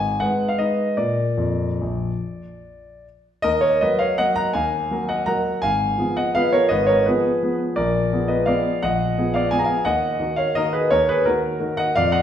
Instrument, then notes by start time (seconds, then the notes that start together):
grand piano
Already playing: G#1 G#5
0.20 G#3 D#4 B4 F#5
0.48 F5
0.58 G#3 D#4 B4 D#5
0.97 A#2 A#3 A#4 D5
1.37 F2
1.81 A#1
3.42 D#2 A#4 D#5
3.61 A#4 C#5
3.81 F#3 A#3 A#4 B4 D#5
3.99 C#5 F5
4.18 F#3 A#3 A#4 D#5 F#5
4.36 F#5 A#5
4.53 D#2 F5 G#5
4.91 F#3 A#3 A#4
5.09 D#5 F#5
5.26 F#3 A#3 A#4 F#5 A#5
5.62 G#1 F5 G#5
5.98 F3 B3 G#4
6.17 D#5 F#5
6.35 F3 B3 G#4 B4 F5
6.53 A#4 C#5
6.69 G#1 B4 D#5
6.87 A#4 C#5
7.06 F3 B3 G#4 B4
7.43 F3 B3 G#4
7.76 A#1 A#4 D5
8.13 F3 B3 G#4
8.28 B4 D#5
8.46 F3 B3 G#4 D5 F5
8.83 A#1 D#5 F#5
9.18 F3 B3 G#4
9.34 D5 F5
9.51 F3 B3 G#4 G#5
9.59 A#5
9.64 F5 G#5
9.85 D#2 D#5 F#5
10.20 D#3 A#3 F#4
10.36 C#5 F5
10.55 D#3 A#3 F#4 A#4 D#5
10.73 G#4 B4
10.91 D#2 A#4 C#5
11.09 G#4 B4
11.25 D#3 A#3 F#4 A#4
11.60 D#3 A#3 F#4
11.77 D#5 F#5
11.96 F2 D5 F5
12.12 D#5 F#5